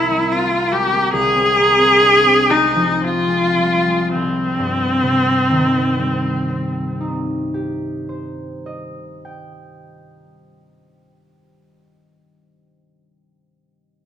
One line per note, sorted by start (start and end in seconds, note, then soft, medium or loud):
0.00 1.12 C2 medium
0.00 0.49 A#3 medium
0.00 0.30 C4 medium
0.00 0.33 E4 loud
0.10 1.17 G3 medium
0.31 1.34 C4 medium
0.31 0.73 F4 loud
0.51 0.91 A#3 medium
0.72 1.08 G#3 medium
0.72 1.13 G4 loud
0.92 1.17 A#3 medium
1.13 4.14 C2 medium
1.13 2.51 G#4 loud
1.35 1.77 C4 medium
1.56 1.94 A#3 medium
1.78 2.23 C4 medium
2.01 2.42 D4 medium
2.24 3.00 C4 medium
2.50 3.27 G#3 medium
2.50 3.05 D#4 loud
2.75 4.21 F3 medium
3.01 6.48 C4 medium
3.01 4.11 F4 loud
3.28 3.87 G#3 medium
3.58 4.08 G3 medium
3.88 4.21 G#3 medium
4.12 8.05 C2 medium
4.12 7.13 C4 loud
4.59 8.49 G2 medium
5.03 8.93 C3 medium
5.50 9.40 D#3 medium
5.98 9.55 G3 medium
6.49 9.50 C4 medium
7.00 10.01 D#4 medium
7.54 10.55 G4 medium
8.09 11.10 C5 medium
8.66 11.67 D#5 medium
9.25 12.25 G5 medium